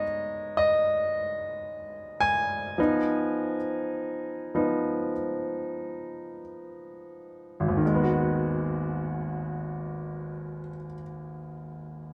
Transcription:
0, 0, Header, 1, 2, 480
1, 0, Start_track
1, 0, Key_signature, 5, "minor"
1, 0, Tempo, 1073345
1, 746, Tempo, 1117318
1, 1226, Time_signature, 4, 2, 24, 8
1, 1226, Tempo, 1160542
1, 1706, Tempo, 1217039
1, 2186, Tempo, 1284797
1, 2666, Tempo, 1369863
1, 3146, Tempo, 1418440
1, 4605, End_track
2, 0, Start_track
2, 0, Title_t, "Grand piano"
2, 0, Program_c, 0, 0
2, 0, Control_c, 0, 64, 127
2, 0, Note_on_c, 0, 56, 44
2, 0, Note_on_c, 0, 59, 38
2, 0, Note_on_c, 0, 63, 49
2, 0, Note_on_c, 0, 73, 75
2, 0, Note_on_c, 0, 75, 64
2, 249, Note_off_c, 0, 75, 0
2, 256, Note_on_c, 0, 75, 72
2, 977, Note_on_c, 0, 80, 75
2, 1002, Note_off_c, 0, 75, 0
2, 1224, Note_on_c, 0, 53, 37
2, 1229, Note_off_c, 0, 59, 0
2, 1229, Note_on_c, 0, 59, 36
2, 1231, Control_c, 0, 64, 0
2, 1232, Note_off_c, 0, 63, 0
2, 1232, Note_on_c, 0, 63, 47
2, 1233, Note_off_c, 0, 73, 0
2, 1234, Note_off_c, 0, 56, 0
2, 1307, Control_c, 0, 64, 127
2, 1542, Note_off_c, 0, 53, 0
2, 1545, Note_off_c, 0, 59, 0
2, 1546, Note_off_c, 0, 63, 0
2, 1943, Note_on_c, 0, 53, 33
2, 1945, Note_on_c, 0, 59, 26
2, 1946, Note_on_c, 0, 63, 35
2, 2170, Note_off_c, 0, 53, 0
2, 2171, Note_off_c, 0, 59, 0
2, 2172, Note_off_c, 0, 63, 0
2, 2648, Note_off_c, 0, 80, 0
2, 3070, Note_on_c, 0, 32, 36
2, 3099, Note_on_c, 0, 39, 32
2, 3130, Note_on_c, 0, 51, 35
2, 3151, Control_c, 0, 64, 0
2, 3160, Note_on_c, 0, 56, 34
2, 3190, Note_on_c, 0, 59, 34
2, 3215, Control_c, 0, 64, 127
2, 3218, Note_on_c, 0, 66, 41
2, 4084, Note_off_c, 0, 32, 0
2, 4112, Note_off_c, 0, 39, 0
2, 4142, Note_off_c, 0, 51, 0
2, 4172, Note_off_c, 0, 56, 0
2, 4201, Note_off_c, 0, 59, 0
2, 4230, Note_off_c, 0, 66, 0
2, 4605, End_track
0, 0, End_of_file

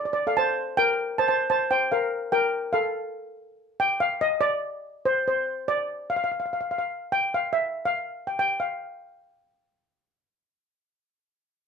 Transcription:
0, 0, Header, 1, 2, 480
1, 0, Start_track
1, 0, Tempo, 414938
1, 544, Time_signature, 4, 2, 24, 8
1, 13503, End_track
2, 0, Start_track
2, 0, Title_t, "Steel pan"
2, 0, Program_c, 0, 114
2, 63, Note_on_c, 0, 74, 57
2, 138, Note_off_c, 0, 74, 0
2, 152, Note_on_c, 0, 74, 76
2, 232, Note_off_c, 0, 74, 0
2, 310, Note_on_c, 0, 69, 59
2, 314, Note_on_c, 0, 77, 81
2, 423, Note_off_c, 0, 69, 0
2, 425, Note_off_c, 0, 77, 0
2, 426, Note_on_c, 0, 81, 108
2, 441, Note_on_c, 0, 72, 76
2, 872, Note_off_c, 0, 81, 0
2, 880, Note_off_c, 0, 72, 0
2, 894, Note_on_c, 0, 79, 109
2, 909, Note_on_c, 0, 70, 79
2, 1345, Note_off_c, 0, 79, 0
2, 1353, Note_off_c, 0, 70, 0
2, 1369, Note_on_c, 0, 81, 94
2, 1380, Note_on_c, 0, 72, 75
2, 1470, Note_off_c, 0, 81, 0
2, 1478, Note_off_c, 0, 72, 0
2, 1484, Note_on_c, 0, 81, 86
2, 1492, Note_on_c, 0, 72, 66
2, 1717, Note_off_c, 0, 72, 0
2, 1719, Note_off_c, 0, 81, 0
2, 1733, Note_on_c, 0, 81, 91
2, 1734, Note_on_c, 0, 72, 70
2, 1958, Note_off_c, 0, 72, 0
2, 1975, Note_on_c, 0, 79, 99
2, 1978, Note_on_c, 0, 72, 71
2, 1982, Note_off_c, 0, 81, 0
2, 2083, Note_off_c, 0, 79, 0
2, 2086, Note_off_c, 0, 72, 0
2, 2217, Note_on_c, 0, 77, 78
2, 2225, Note_on_c, 0, 70, 72
2, 2665, Note_off_c, 0, 70, 0
2, 2686, Note_on_c, 0, 79, 99
2, 2692, Note_on_c, 0, 70, 81
2, 2709, Note_off_c, 0, 77, 0
2, 3138, Note_off_c, 0, 70, 0
2, 3154, Note_on_c, 0, 77, 80
2, 3167, Note_on_c, 0, 69, 64
2, 3183, Note_off_c, 0, 79, 0
2, 3835, Note_off_c, 0, 77, 0
2, 3842, Note_off_c, 0, 69, 0
2, 4394, Note_on_c, 0, 79, 101
2, 4496, Note_off_c, 0, 79, 0
2, 4631, Note_on_c, 0, 77, 93
2, 4844, Note_off_c, 0, 77, 0
2, 4873, Note_on_c, 0, 75, 96
2, 5097, Note_on_c, 0, 74, 92
2, 5108, Note_off_c, 0, 75, 0
2, 5767, Note_off_c, 0, 74, 0
2, 5847, Note_on_c, 0, 72, 87
2, 6075, Note_off_c, 0, 72, 0
2, 6104, Note_on_c, 0, 72, 64
2, 6571, Note_off_c, 0, 72, 0
2, 6572, Note_on_c, 0, 74, 93
2, 7045, Note_off_c, 0, 74, 0
2, 7055, Note_on_c, 0, 77, 74
2, 7119, Note_off_c, 0, 77, 0
2, 7132, Note_on_c, 0, 77, 62
2, 7198, Note_off_c, 0, 77, 0
2, 7216, Note_on_c, 0, 77, 68
2, 7282, Note_off_c, 0, 77, 0
2, 7307, Note_on_c, 0, 77, 44
2, 7375, Note_off_c, 0, 77, 0
2, 7400, Note_on_c, 0, 77, 51
2, 7456, Note_off_c, 0, 77, 0
2, 7469, Note_on_c, 0, 77, 44
2, 7540, Note_off_c, 0, 77, 0
2, 7555, Note_on_c, 0, 77, 58
2, 7629, Note_off_c, 0, 77, 0
2, 7642, Note_on_c, 0, 77, 49
2, 7712, Note_off_c, 0, 77, 0
2, 7764, Note_on_c, 0, 77, 59
2, 7821, Note_off_c, 0, 77, 0
2, 7849, Note_on_c, 0, 77, 60
2, 7907, Note_off_c, 0, 77, 0
2, 8239, Note_on_c, 0, 79, 98
2, 8473, Note_off_c, 0, 79, 0
2, 8495, Note_on_c, 0, 77, 80
2, 8594, Note_off_c, 0, 77, 0
2, 8708, Note_on_c, 0, 76, 76
2, 9077, Note_off_c, 0, 76, 0
2, 9086, Note_on_c, 0, 77, 83
2, 9568, Note_off_c, 0, 77, 0
2, 9569, Note_on_c, 0, 79, 65
2, 9663, Note_off_c, 0, 79, 0
2, 9708, Note_on_c, 0, 79, 86
2, 9929, Note_off_c, 0, 79, 0
2, 9947, Note_on_c, 0, 77, 64
2, 11560, Note_off_c, 0, 77, 0
2, 13503, End_track
0, 0, End_of_file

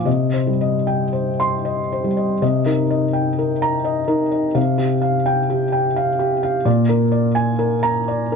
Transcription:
0, 0, Header, 1, 2, 480
1, 0, Start_track
1, 0, Key_signature, -3, "minor"
1, 0, Tempo, 784314
1, 34, Time_signature, 3, 2, 24, 8
1, 1474, Tempo, 730816
1, 1954, Tempo, 701754
1, 4354, Tempo, 719424
1, 5494, End_track
2, 0, Start_track
2, 0, Title_t, "Felt piano"
2, 0, Program_c, 0, 0
2, 0, Control_c, 0, 64, 127
2, 33, Note_on_c, 0, 75, 41
2, 36, Note_on_c, 0, 48, 45
2, 45, Control_c, 0, 64, 0
2, 171, Control_c, 0, 64, 127
2, 205, Note_on_c, 0, 72, 33
2, 287, Note_on_c, 0, 55, 36
2, 295, Note_off_c, 0, 75, 0
2, 373, Note_on_c, 0, 75, 36
2, 461, Note_off_c, 0, 72, 0
2, 532, Note_on_c, 0, 79, 39
2, 625, Note_off_c, 0, 75, 0
2, 671, Note_off_c, 0, 55, 0
2, 689, Note_on_c, 0, 72, 33
2, 784, Note_off_c, 0, 79, 0
2, 855, Note_on_c, 0, 84, 53
2, 942, Note_off_c, 0, 72, 0
2, 1009, Note_on_c, 0, 75, 36
2, 1104, Note_off_c, 0, 84, 0
2, 1177, Note_on_c, 0, 72, 36
2, 1248, Note_on_c, 0, 55, 33
2, 1261, Note_off_c, 0, 75, 0
2, 1327, Note_on_c, 0, 75, 34
2, 1422, Note_off_c, 0, 72, 0
2, 1451, Note_off_c, 0, 48, 0
2, 1473, Note_off_c, 0, 75, 0
2, 1478, Note_off_c, 0, 55, 0
2, 1481, Note_on_c, 0, 48, 50
2, 1482, Note_on_c, 0, 75, 47
2, 1487, Control_c, 0, 64, 0
2, 1617, Control_c, 0, 64, 127
2, 1639, Note_on_c, 0, 63, 37
2, 1639, Note_on_c, 0, 70, 39
2, 1736, Note_off_c, 0, 75, 0
2, 1800, Note_on_c, 0, 75, 44
2, 1893, Note_off_c, 0, 63, 0
2, 1893, Note_off_c, 0, 70, 0
2, 1950, Note_on_c, 0, 79, 42
2, 2054, Note_off_c, 0, 75, 0
2, 2123, Note_on_c, 0, 70, 38
2, 2211, Note_off_c, 0, 79, 0
2, 2283, Note_on_c, 0, 82, 59
2, 2377, Note_off_c, 0, 70, 0
2, 2437, Note_on_c, 0, 75, 44
2, 2538, Note_off_c, 0, 82, 0
2, 2595, Note_on_c, 0, 70, 44
2, 2596, Note_on_c, 0, 63, 41
2, 2695, Note_off_c, 0, 75, 0
2, 2759, Note_on_c, 0, 75, 41
2, 2855, Note_off_c, 0, 70, 0
2, 2856, Note_off_c, 0, 63, 0
2, 2898, Note_off_c, 0, 48, 0
2, 2916, Note_on_c, 0, 48, 53
2, 2917, Note_on_c, 0, 77, 44
2, 2921, Note_off_c, 0, 75, 0
2, 2935, Control_c, 0, 64, 0
2, 3065, Control_c, 0, 64, 127
2, 3076, Note_on_c, 0, 67, 40
2, 3178, Note_off_c, 0, 77, 0
2, 3238, Note_on_c, 0, 77, 45
2, 3337, Note_off_c, 0, 67, 0
2, 3403, Note_on_c, 0, 79, 57
2, 3496, Note_off_c, 0, 77, 0
2, 3567, Note_on_c, 0, 67, 44
2, 3657, Note_off_c, 0, 79, 0
2, 3722, Note_on_c, 0, 79, 48
2, 3817, Note_off_c, 0, 67, 0
2, 3886, Note_on_c, 0, 77, 50
2, 3974, Note_off_c, 0, 79, 0
2, 4043, Note_on_c, 0, 67, 46
2, 4136, Note_off_c, 0, 77, 0
2, 4204, Note_on_c, 0, 77, 48
2, 4294, Note_off_c, 0, 67, 0
2, 4325, Note_off_c, 0, 48, 0
2, 4356, Note_on_c, 0, 46, 61
2, 4358, Note_on_c, 0, 74, 52
2, 4359, Note_off_c, 0, 77, 0
2, 4366, Control_c, 0, 64, 0
2, 4474, Control_c, 0, 64, 127
2, 4517, Note_on_c, 0, 70, 48
2, 4607, Note_off_c, 0, 74, 0
2, 4667, Note_on_c, 0, 74, 51
2, 4767, Note_off_c, 0, 70, 0
2, 4822, Note_on_c, 0, 80, 54
2, 4922, Note_off_c, 0, 74, 0
2, 4981, Note_on_c, 0, 70, 46
2, 5082, Note_off_c, 0, 80, 0
2, 5141, Note_on_c, 0, 82, 68
2, 5243, Note_off_c, 0, 70, 0
2, 5309, Note_on_c, 0, 74, 47
2, 5405, Note_off_c, 0, 82, 0
2, 5470, Note_on_c, 0, 70, 46
2, 5494, Note_off_c, 0, 46, 0
2, 5494, Note_off_c, 0, 70, 0
2, 5494, Note_off_c, 0, 74, 0
2, 5494, End_track
0, 0, End_of_file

